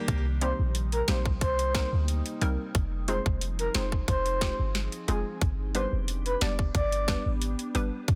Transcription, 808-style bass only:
0, 0, Header, 1, 2, 480
1, 0, Start_track
1, 0, Key_signature, -3, "minor"
1, 0, Tempo, 666667
1, 59, Time_signature, 4, 2, 24, 8
1, 5869, End_track
2, 0, Start_track
2, 0, Title_t, "808-style bass"
2, 0, Program_c, 0, 38
2, 59, Note_on_c, 0, 36, 104
2, 382, Note_off_c, 0, 36, 0
2, 426, Note_on_c, 0, 34, 92
2, 736, Note_off_c, 0, 34, 0
2, 779, Note_on_c, 0, 34, 103
2, 1017, Note_on_c, 0, 36, 99
2, 1028, Note_off_c, 0, 34, 0
2, 1341, Note_off_c, 0, 36, 0
2, 1386, Note_on_c, 0, 38, 94
2, 1597, Note_off_c, 0, 38, 0
2, 1739, Note_on_c, 0, 36, 90
2, 1851, Note_off_c, 0, 36, 0
2, 1979, Note_on_c, 0, 29, 101
2, 2302, Note_off_c, 0, 29, 0
2, 2346, Note_on_c, 0, 29, 87
2, 2656, Note_off_c, 0, 29, 0
2, 2698, Note_on_c, 0, 29, 94
2, 2910, Note_off_c, 0, 29, 0
2, 2938, Note_on_c, 0, 29, 116
2, 3261, Note_off_c, 0, 29, 0
2, 3306, Note_on_c, 0, 31, 94
2, 3517, Note_off_c, 0, 31, 0
2, 3658, Note_on_c, 0, 29, 95
2, 3770, Note_off_c, 0, 29, 0
2, 3899, Note_on_c, 0, 31, 101
2, 4222, Note_off_c, 0, 31, 0
2, 4265, Note_on_c, 0, 29, 89
2, 4576, Note_off_c, 0, 29, 0
2, 4619, Note_on_c, 0, 29, 104
2, 4830, Note_off_c, 0, 29, 0
2, 4857, Note_on_c, 0, 31, 116
2, 5181, Note_off_c, 0, 31, 0
2, 5226, Note_on_c, 0, 32, 89
2, 5437, Note_off_c, 0, 32, 0
2, 5578, Note_on_c, 0, 31, 87
2, 5690, Note_off_c, 0, 31, 0
2, 5819, Note_on_c, 0, 39, 106
2, 5869, Note_off_c, 0, 39, 0
2, 5869, End_track
0, 0, End_of_file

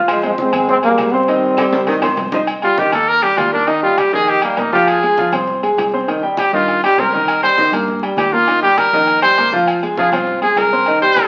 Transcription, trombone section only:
0, 0, Header, 1, 2, 480
1, 0, Start_track
1, 0, Key_signature, -3, "minor"
1, 0, Tempo, 299700
1, 135, Time_signature, 4, 2, 24, 8
1, 18061, End_track
2, 0, Start_track
2, 0, Title_t, "Trombone section"
2, 0, Program_c, 0, 61
2, 156, Note_on_c, 0, 56, 101
2, 162, Note_on_c, 0, 53, 70
2, 369, Note_off_c, 0, 56, 0
2, 372, Note_off_c, 0, 53, 0
2, 400, Note_on_c, 0, 56, 91
2, 405, Note_on_c, 0, 53, 67
2, 502, Note_off_c, 0, 56, 0
2, 505, Note_off_c, 0, 53, 0
2, 628, Note_on_c, 0, 60, 100
2, 635, Note_on_c, 0, 56, 78
2, 1067, Note_off_c, 0, 60, 0
2, 1070, Note_off_c, 0, 56, 0
2, 1103, Note_on_c, 0, 60, 114
2, 1115, Note_on_c, 0, 56, 88
2, 1208, Note_off_c, 0, 60, 0
2, 1218, Note_off_c, 0, 56, 0
2, 1327, Note_on_c, 0, 58, 104
2, 1342, Note_on_c, 0, 55, 82
2, 1775, Note_off_c, 0, 58, 0
2, 1783, Note_off_c, 0, 55, 0
2, 1815, Note_on_c, 0, 60, 107
2, 1824, Note_on_c, 0, 55, 81
2, 3251, Note_off_c, 0, 60, 0
2, 3256, Note_off_c, 0, 55, 0
2, 18061, End_track
0, 0, End_of_file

